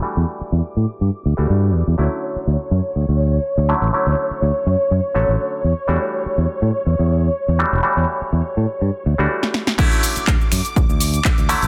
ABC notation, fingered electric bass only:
X:1
M:4/4
L:1/16
Q:"Swing 16ths" 1/4=123
K:D
V:1 name="Fingered electric bass" clef=bass
z E,, z2 E,, z A,, z G,, z D,, D,, G,,2 E,, E,, | D,, z3 D,, z F,, z D,, D,,2 z2 D,, z A,,, | z D,, z2 D,, z F,, z F,, z A,,, A,,, z2 E,, z | E,, z3 E,, z A,, z E,, E,,2 z2 E,, z E,,, |
z E,, z2 E,, z A,, z G,, z D,, D,, z4 | D,, z3 D,, z F,, z D,, D,,2 z2 D,, z A,,, |]